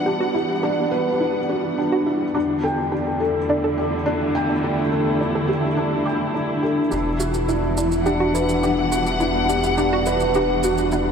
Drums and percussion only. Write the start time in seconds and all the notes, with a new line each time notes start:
6.92 shaker
7.20 shaker
7.34 shaker
7.49 shaker
7.77 shaker
7.92 shaker
8.06 shaker
8.35 shaker
8.49 shaker
8.63 shaker
8.92 shaker
9.07 shaker
9.20 shaker
9.49 shaker
9.64 shaker
9.78 shaker
10.06 shaker
10.20 shaker
10.34 shaker
10.63 shaker
10.78 shaker
10.92 shaker